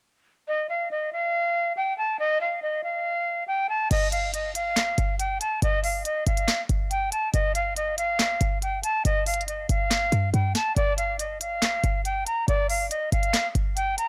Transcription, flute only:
0.48 D#5
0.69 F5
0.91 D#5
1.13 F5
1.77 G5
1.98 A5
2.19 D#5
2.41 F5
2.62 D#5
2.84 F5
3.48 G5
3.69 A5
3.91 D#5
4.12 F5
4.34 D#5
4.55 F5
5.19 G5
5.41 A5
5.63 D#5
5.84 F5
6.05 D#5
6.27 F5
6.91 G5
7.12 A5
7.33 D#5
7.55 F5
7.76 D#5
7.98 F5
8.63 G5
8.83 A5
9.05 D#5
9.27 F5
9.48 D#5
9.70 F5
10.34 G5
10.55 A5
10.76 D5
10.98 F5
11.19 D#5
11.41 F5
12.05 G5
12.27 A#5
12.48 D5
12.70 F5
12.91 D#5
13.12 F5
13.76 G5
13.98 A#5

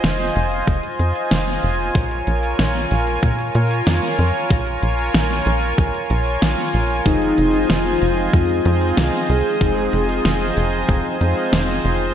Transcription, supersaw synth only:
Already playing: F4 C5 D#5 G#5
1.95 C#5
7.06 C5 D#5

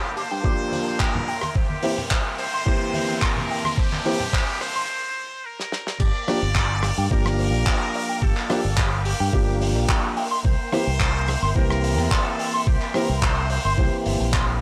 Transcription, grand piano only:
0.43 F3 A#3 D4 G4
1.82 E3 A#3 C4 G4
2.65 E3 A#3 C4 G4
4.05 E3 A#3 C4 G4
6.28 F3 A#3 D4 G4
7.10 F3 A#3 D4 G4
8.49 F3 A#3 D4 G4
9.33 F3 A#3 D4 G4
10.72 E3 A#3 C4 G4
11.55 E3 A#3 C4 G4
12.95 E3 A#3 C4 G4
13.77 E3 A#3 C4 G4

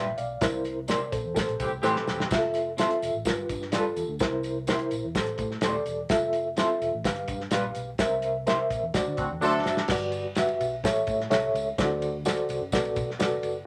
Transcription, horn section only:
1.60 E3 C4 G4
1.82 E3 C4 G4
9.17 D3 C4 F#4
9.41 F#3 D4 A4

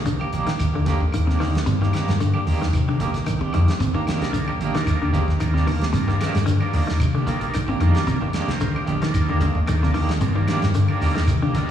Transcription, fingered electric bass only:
Already playing: C2
0.33 A#1
0.59 D#2
0.86 muted fingered electric bass stroke
1.00 D#2
1.40 C2
1.67 G2
2.08 G2
2.47 D#2
2.73 C3
3.14 C2
3.55 F2
3.80 C2
4.07 muted fingered electric bass stroke
4.21 C2
4.59 A#1
4.87 D#2
5.14 muted fingered electric bass stroke
5.27 D#2
5.68 C2
5.93 G2
6.35 G2
6.73 D#2
7.00 C3
7.41 C2
7.80 F2
8.07 C2
8.34 muted fingered electric bass stroke
8.48 C2
8.88 A#1
9.14 D#2
9.40 muted fingered electric bass stroke
9.55 D#2
9.94 C2
10.21 G2
10.63 G2
11.01 D#2
11.27 C3

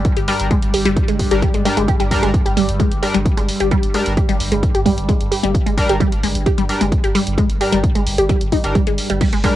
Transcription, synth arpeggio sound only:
0.17 G4
0.28 G3
0.51 G#3
0.74 G4
0.85 G3
1.08 G#3
1.31 G4
1.42 G3
1.54 G#3
1.65 G3
1.77 G#3
1.88 G4
2.00 G3
2.23 G#3
2.46 G4
2.57 G3
2.80 G#3
3.03 G4
3.14 G3
3.37 G#3
3.60 G4
3.71 G3
3.94 G#3
4.17 G4
4.29 G3
4.52 G#3
4.75 G4
4.86 G3
5.09 G#3
5.32 G4
5.43 G3
5.66 G#3
5.89 G4
6.00 G3
6.23 G#3
6.46 G4
6.58 G3
6.81 G#3
7.04 G4
7.15 G3
7.38 G#3
7.61 G4
7.72 G3
7.95 G#3
8.18 G4
8.29 G3
8.52 D#4
8.75 G3
8.87 G#3
9.10 G3
9.21 G3
9.33 G#3
9.44 G#3

